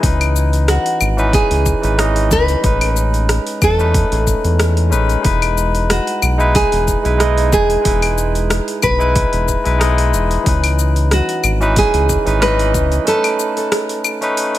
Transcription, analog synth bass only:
0.03 0.78 C#2 loud
1.01 1.44 G#1 medium
1.51 1.74 C#2 medium
1.83 2.33 G#1 loud
2.31 2.56 C#2 loud
2.64 3.39 A1 loud
3.62 4.05 E2 medium
4.12 4.35 A1 medium
4.44 4.94 E2 loud
4.92 5.17 A1 loud
5.25 6.00 E1 loud
6.22 6.65 B1 medium
6.72 6.96 E1 medium
7.05 7.54 B1 medium
7.53 7.78 E1 loud
7.85 8.61 E1 loud
8.83 9.26 B1 medium
9.33 9.57 E1 medium
9.66 10.14 B1 loud
10.13 10.38 E1 loud
10.46 11.22 C#2 loud
11.44 11.87 G#1 medium
11.94 12.18 C#2 medium
12.26 12.76 G#1 loud
12.75 12.99 C#2 loud

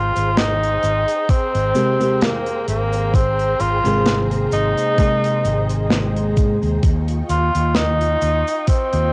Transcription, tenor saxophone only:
0.00 0.39 F4 loud
0.38 1.31 D#4 loud
1.30 2.24 C4 loud
2.22 2.68 A#3 medium
2.68 3.16 A#3 medium
3.14 3.62 C4 loud
3.61 4.27 F4 loud
4.53 6.33 D#4 loud
7.30 7.77 F4 loud
7.76 8.67 D#4 loud
8.68 9.13 C4 loud

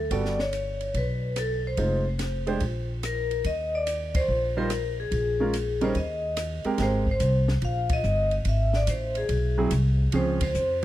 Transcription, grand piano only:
0.11 0.36 G3 medium
0.11 0.36 B3 soft
0.11 0.36 F#4 soft
0.11 0.37 A4 medium
1.78 2.03 G#3 medium
1.78 2.03 D#4 soft
1.78 2.03 F4 soft
1.78 2.03 C5 medium
2.47 2.59 G#3 medium
2.47 2.60 D4 medium
2.47 2.60 G4 medium
2.47 2.60 C5 medium
4.57 4.69 G3 medium
4.57 4.69 D#4 medium
4.57 4.69 F4 medium
4.57 4.69 C5 medium
5.40 5.52 G#3 medium
5.40 5.53 C#4 medium
5.40 5.53 F4 medium
5.40 5.53 A#4 medium
5.81 5.94 G3 medium
5.81 5.94 C#4 medium
5.81 5.94 D#4 medium
5.81 5.94 A#4 medium
6.65 6.77 G#3 medium
6.65 6.78 C4 medium
6.65 6.78 G4 medium
6.65 6.78 A#4 medium
6.79 7.04 G#3 medium
6.79 7.05 C4 medium
6.79 7.05 G4 soft
6.79 7.05 A#4 medium
9.58 9.70 F#3 medium
9.58 9.70 C4 medium
9.58 9.70 E4 medium
9.58 9.70 G#4 medium
10.13 10.38 F3 medium
10.13 10.39 C4 medium
10.13 10.39 C#4 medium
10.13 10.39 G#4 medium

